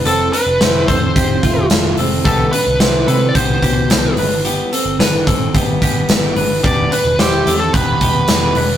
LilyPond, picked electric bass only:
\new Staff \with { instrumentName = "Picked electric bass" } { \clef bass \time 4/4 \key c \major \tempo 4 = 109 f,,8 r16 f,,16 f,,8 f,8 f,,8 f,,8 f,,8 f,,8 | c,8 r16 c,16 c,8 c8 c,8 c,8 c,8 g,,8~ | g,,8 r16 g,,16 g,,8 g,8 g,,8 g,,8 g,,8 g,,8 | e,,8 r16 e,,16 e,,8 e,8 e,,8 e,,8 e,,8 e,,8 | }